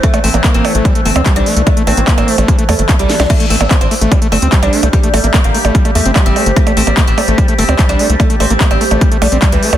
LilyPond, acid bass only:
\new Staff \with { instrumentName = "Acid bass" } { \time 4/4 \key a \phrygian \tempo 4 = 147 a16 a16 a16 bes16 bes8 a16 a16 g16 a16 a16 c'16 g8 a16 a16 | a16 a16 a16 bes16 bes8 a16 a16 g16 a16 a16 a16 bes16 g16 bes16 c'16 | a16 a16 a16 bes16 bes16 r16 a16 a16 g16 a16 a16 c'16 g8 a16 a16 | a16 a16 a16 bes16 bes16 r16 a16 a16 g16 a16 a16 c'16 g8 a16 a16 |
a16 a16 a16 bes16 bes16 r16 a16 a16 g16 a16 a16 c'16 g8 a16 a16 | a16 a16 a16 bes16 bes16 r16 a16 a16 g16 a16 a16 c'16 g8 a16 a16 | }